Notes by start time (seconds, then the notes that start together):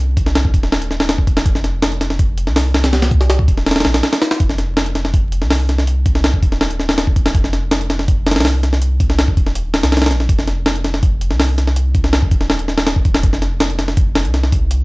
Already playing: C2
0.17 kick, closed hi-hat
0.26 snare
0.35 snare, closed hi-hat
0.45 kick
0.54 D#1, kick, closed hi-hat
0.63 snare
0.72 snare
0.82 closed hi-hat
0.91 snare
1.00 snare
1.09 snare, closed hi-hat
1.18 kick
1.27 kick, closed hi-hat
1.37 snare, closed hi-hat
1.46 F1, kick, closed hi-hat
1.55 snare
1.64 snare, closed hi-hat
1.82 snare, closed hi-hat
1.92 closed hi-hat
2.01 snare, closed hi-hat
2.10 snare
2.19 kick, closed hi-hat
2.38 closed hi-hat
2.47 C2, snare
2.56 snare, open hi-hat
2.74 snare, closed hi-hat
2.84 snare, closed hi-hat
2.93 snare, closed hi-hat
3.02 snare, closed hi-hat
3.11 kick, closed hi-hat
3.21 snare
3.30 snare, closed hi-hat
3.39 kick
3.48 D#1, kick, closed hi-hat
3.57 snare
3.66 snare, closed hi-hat
3.71 snare, closed hi-hat
3.76 snare, closed hi-hat
3.80 snare, closed hi-hat
3.85 A#1, snare, closed hi-hat
3.94 snare, closed hi-hat
4.03 snare, closed hi-hat
4.13 snare, closed hi-hat
4.22 snare, closed hi-hat
4.31 snare, closed hi-hat
4.40 F1, kick, closed hi-hat
4.49 snare
4.58 snare, closed hi-hat
4.77 snare, closed hi-hat
4.86 closed hi-hat
4.95 snare, closed hi-hat
5.05 snare
5.14 kick, closed hi-hat
5.32 closed hi-hat
5.42 C2, snare
5.50 snare, open hi-hat
5.69 snare, closed hi-hat
5.78 snare
5.87 closed hi-hat
6.06 kick, closed hi-hat
6.15 snare
6.24 snare, closed hi-hat
6.34 kick
6.43 D#1, kick, closed hi-hat
6.52 snare
6.61 snare
6.71 closed hi-hat
6.80 snare
6.89 snare
6.98 snare, closed hi-hat
7.07 kick
7.16 kick, closed hi-hat
7.26 snare, closed hi-hat
7.35 F1, kick, closed hi-hat
7.44 snare
7.53 snare, closed hi-hat
7.71 snare, closed hi-hat
7.81 closed hi-hat
7.90 snare, closed hi-hat
7.99 snare
8.08 kick, closed hi-hat
8.27 snare, closed hi-hat
8.31 snare, closed hi-hat
8.36 C2, snare, closed hi-hat
8.40 snare, closed hi-hat
8.45 snare, open hi-hat
8.63 snare, closed hi-hat
8.73 snare
8.82 closed hi-hat
9.00 kick, closed hi-hat
9.10 snare
9.19 snare, closed hi-hat
9.28 kick
9.37 D#1, kick, closed hi-hat
9.46 snare
9.55 closed hi-hat
9.74 snare, closed hi-hat
9.83 C2, snare, closed hi-hat
9.92 snare, closed hi-hat
9.97 snare, closed hi-hat
10.02 snare, closed hi-hat
10.06 snare, closed hi-hat
10.11 A#1, snare, closed hi-hat
10.20 snare
10.29 F1, kick, closed hi-hat
10.39 snare
10.47 snare, closed hi-hat
10.66 snare, closed hi-hat
10.75 closed hi-hat
10.84 snare, closed hi-hat
10.94 snare
11.03 kick, closed hi-hat
11.21 closed hi-hat
11.31 C2, snare
11.40 snare, open hi-hat
11.58 snare, closed hi-hat
11.67 snare
11.76 closed hi-hat
11.95 kick, closed hi-hat
12.04 snare
12.13 snare, closed hi-hat
12.22 kick
12.31 D#1, kick, closed hi-hat
12.41 snare
12.50 snare
12.59 closed hi-hat
12.68 snare
12.78 snare
12.87 snare, closed hi-hat
12.96 kick
13.05 kick, closed hi-hat
13.14 snare, closed hi-hat
13.23 F1, kick, closed hi-hat
13.33 snare
13.42 snare, closed hi-hat
13.60 snare, closed hi-hat
13.70 closed hi-hat
13.79 snare, closed hi-hat
13.88 snare
13.97 kick, closed hi-hat
14.15 snare, closed hi-hat
14.25 C2, closed hi-hat
14.34 snare, closed hi-hat
14.43 snare
14.52 kick, closed hi-hat
14.71 closed hi-hat